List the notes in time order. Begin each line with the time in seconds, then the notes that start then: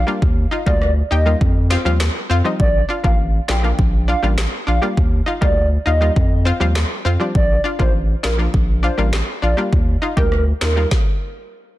0.07 G3 A#3 D4 F4
0.22 D#2, kick
0.51 D#4 F4
0.66 D2 G3 A#3 D#4 F4 D5, kick
0.82 cross-stick
1.11 D#2 D#4 G4 D#5
1.26 G3 A#3 D#4 F4
1.41 F2, kick
1.70 C4 F4, snare
1.85 D#2 F3 G3 C4 F4
2.00 cross-stick, snare, clap
2.30 F2 C4 F4
2.44 F3 G3 C4 D#4
2.60 A#1 D5, kick
2.89 D4 F4
3.04 A1 F3 A#3 D4 F4 F5, kick
3.48 A#1 D4 F4 G5, snare, clap
3.63 F3 A#3 D4 F4
3.79 A#1, kick
4.08 D4 F4 F5
4.23 A1 G3 A#3 D4 F4
4.38 snare, clap
4.67 A#1 D4 F4 F5
4.82 G3 A#3 D4 F4
4.97 D#2, kick
5.26 D#4 F4
5.41 D2 G3 A#3 D#4 F4 D5, kick
5.86 D#2 D#4 F4 D#5
6.01 G3 A#3 D#4 F4
6.16 F2, kick
6.45 C4 F4
6.60 D#2 F3 G3 C4 F4
6.76 snare, clap
7.05 F2 C4 F4
7.20 F3 G3 C4 D4
7.35 A#1 D5, kick
7.64 D4 F4
7.79 A1 F3 A#3 D4 F4 C5, kick
8.23 A#1 D4 F4 A#4, snare, clap
8.38 F3 A#3 D4 F4
8.54 A#1, kick
8.83 D4 F4 C5
8.97 A1 G3 A#3 D4 F4
9.13 snare, clap
9.42 A#1 D4 F4 D5
9.57 G3 A#3 D4 F4
9.73 D#2, kick
10.02 D#4 F4
10.17 D2 G3 A#3 D#4 G4 A#4, kick
10.32 cross-stick
10.61 D#2 D#4 F4 A#4, snare, clap
10.76 G3 A#3 D#4 F4
10.91 kick, snare